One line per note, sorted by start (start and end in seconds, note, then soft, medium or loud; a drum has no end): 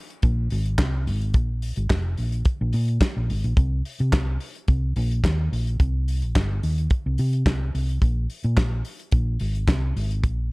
0.10 closed hi-hat soft
0.22 0.47 A#1 loud
0.22 kick loud
0.22 closed hi-hat medium
0.50 0.75 G#1 loud
0.50 open hi-hat medium
0.66 closed hi-hat soft
0.78 1.09 C2 medium
0.78 kick loud
0.78 snare loud
0.78 clap loud
0.78 closed hi-hat medium
1.07 1.35 G#1 medium
1.07 open hi-hat medium
1.22 closed hi-hat soft
1.34 1.71 A#1 loud
1.34 kick loud
1.34 closed hi-hat medium
1.62 open hi-hat medium
1.76 1.88 G#1 medium
1.76 closed hi-hat soft
1.90 2.14 F1 medium
1.90 kick loud
1.90 snare loud
1.90 clap medium
1.90 closed hi-hat medium
2.17 2.42 A#1 medium
2.17 open hi-hat medium
2.32 closed hi-hat medium
2.45 kick loud
2.45 closed hi-hat medium
2.61 2.72 A#1 medium
2.73 2.97 A#2 loud
2.73 open hi-hat medium
2.88 closed hi-hat soft
3.01 kick loud
3.01 snare loud
3.01 clap loud
3.01 closed hi-hat medium
3.17 3.31 A#1 medium
3.30 3.42 G#1 loud
3.30 open hi-hat medium
3.44 3.55 A#1 medium
3.44 closed hi-hat medium
3.57 3.81 C2 loud
3.57 kick loud
3.57 closed hi-hat medium
3.85 open hi-hat medium
3.99 4.11 C3 loud
3.99 closed hi-hat medium
4.13 4.36 C2 loud
4.13 kick loud
4.13 snare loud
4.13 clap loud
4.13 closed hi-hat medium
4.40 open hi-hat medium
4.55 closed hi-hat soft
4.68 4.92 C2 loud
4.68 kick loud
4.68 closed hi-hat medium
4.96 5.20 A#1 loud
4.96 open hi-hat medium
5.11 closed hi-hat soft
5.24 5.47 D#2 loud
5.24 kick loud
5.24 snare loud
5.24 clap loud
5.24 closed hi-hat medium
5.52 5.75 A#1 medium
5.52 open hi-hat medium
5.67 closed hi-hat soft
5.80 6.23 C2 loud
5.80 kick loud
5.80 closed hi-hat medium
6.08 open hi-hat medium
6.22 6.34 A#1 medium
6.22 closed hi-hat soft
6.36 6.59 G1 loud
6.36 kick loud
6.36 snare loud
6.36 clap loud
6.36 closed hi-hat medium
6.63 6.87 D#2 medium
6.63 open hi-hat medium
6.78 closed hi-hat soft
6.90 kick loud
6.90 closed hi-hat medium
7.06 7.17 C2 medium
7.18 7.42 C3 loud
7.18 open hi-hat medium
7.33 closed hi-hat medium
7.46 7.69 C2 medium
7.46 kick loud
7.46 snare loud
7.46 clap loud
7.46 closed hi-hat medium
7.75 7.98 C2 medium
7.75 open hi-hat medium
7.89 closed hi-hat soft
8.02 8.25 A#1 loud
8.02 kick loud
8.02 closed hi-hat medium
8.30 open hi-hat medium
8.44 8.55 A#2 loud
8.44 closed hi-hat soft
8.57 8.81 A#1 medium
8.57 kick loud
8.57 snare loud
8.57 clap medium
8.57 closed hi-hat medium
8.85 open hi-hat medium
8.99 closed hi-hat medium
9.11 9.36 A#1 medium
9.11 kick loud
9.11 closed hi-hat medium
9.40 9.64 G#1 loud
9.40 open hi-hat medium
9.55 closed hi-hat soft
9.67 9.92 C2 loud
9.67 kick loud
9.67 snare loud
9.67 clap medium
9.67 closed hi-hat medium
9.96 10.24 G#1 loud
9.96 open hi-hat medium
10.11 closed hi-hat soft
10.23 10.52 A#1 loud
10.23 kick loud
10.23 closed hi-hat medium